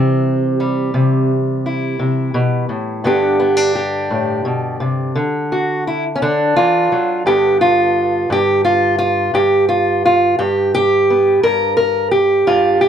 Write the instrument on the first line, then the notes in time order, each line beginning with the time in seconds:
steel-string acoustic guitar
Already playing: C3 E3 G3 C4 G4
0.60 G3
0.94 C3
1.66 E4
1.99 C3
2.34 B2
2.69 A2
3.04 G2 D3 B3 D4 G4
3.40 B3
3.57 D4
3.75 G4
4.10 A2
4.45 B2
4.80 C3
5.15 D3
5.52 F#4
5.87 E4
6.16 C#4
6.22 D3 D4
6.56 E3 F4
6.92 F#3
7.26 G2 D3 B3 G4
7.61 F4
8.30 G2 G4
8.65 F4
8.99 F4
9.34 G2 G4
9.69 F4
10.05 F4
10.39 G2 G4
10.75 G4
11.10 B3
11.43 G2 A#4
11.77 A#4
12.11 G4
12.47 G2 F4
12.81 G4